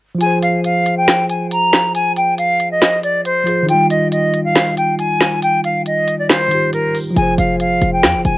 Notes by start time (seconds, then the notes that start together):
0.15 F3 F4
0.21 G#4 G#5, closed hi-hat
0.26 C5
0.42 F5, closed hi-hat
0.64 F5, closed hi-hat
0.86 closed hi-hat
0.97 G5
1.08 finger snap, snare, closed hi-hat
1.29 G#5, closed hi-hat
1.51 A#5, closed hi-hat
1.73 finger snap, snare, closed hi-hat
1.94 G#5, closed hi-hat
2.16 G5, closed hi-hat
2.38 F5, closed hi-hat
2.60 closed hi-hat
2.71 D#5
2.82 finger snap, snare, closed hi-hat
3.03 D5, closed hi-hat
3.25 C5, closed hi-hat
3.44 F3 F4 G#4, closed hi-hat
3.50 C5
3.63 D#3 D#4
3.69 F4 G5, closed hi-hat
3.74 G3
3.90 D#5, closed hi-hat
4.12 D#5, closed hi-hat
4.34 closed hi-hat
4.44 F5
4.56 finger snap, snare, closed hi-hat
4.77 G5, closed hi-hat
4.99 G#5, closed hi-hat
5.21 finger snap, snare, closed hi-hat
5.43 G5, closed hi-hat
5.64 F5, closed hi-hat
5.86 D#5, closed hi-hat
6.08 closed hi-hat
6.19 D5
6.29 C5, finger snap, snare, closed hi-hat
6.48 D#3 D#4 F4, closed hi-hat
6.54 G4
6.73 A#4, closed hi-hat
6.95 open hi-hat
7.10 F3 F4
7.16 F1 G#4 G#5, closed hi-hat
7.22 C5
7.38 F1 F5, closed hi-hat
7.60 F5, closed hi-hat
7.82 F1, closed hi-hat
7.93 G5
8.03 F2, finger snap, snare, closed hi-hat
8.14 F1
8.25 F1 G#5, closed hi-hat